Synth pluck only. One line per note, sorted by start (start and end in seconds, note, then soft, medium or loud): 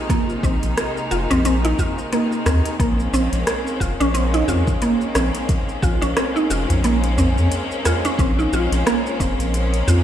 0.10 0.28 A#3 medium
0.44 0.55 C4 medium
1.11 1.29 F4 medium
1.31 1.44 C4 loud
1.45 1.63 C4 medium
1.65 1.78 D#4 medium
1.79 1.97 F4 medium
2.13 2.31 A#3 medium
2.46 2.57 C4 medium
2.80 2.98 A#3 medium
3.14 3.25 C4 medium
3.80 3.98 F4 medium
4.00 4.14 C#4 loud
4.14 4.32 C4 medium
4.34 4.47 D#4 medium
4.48 4.67 F4 medium
4.82 5.00 A#3 medium
5.15 5.27 C4 medium
5.82 6.00 F4 medium
6.02 6.16 C#4 loud
6.17 6.34 C4 medium
6.36 6.50 D#4 medium
6.50 6.69 F4 medium
6.84 7.03 A#3 medium
7.18 7.29 C4 medium
7.85 8.03 F4 medium
8.05 8.18 C#4 medium
8.19 8.37 C4 medium
8.39 8.52 D#4 medium
8.53 8.72 F4 medium
8.86 9.05 A#3 medium
9.20 9.31 C4 medium
9.88 10.04 F4 medium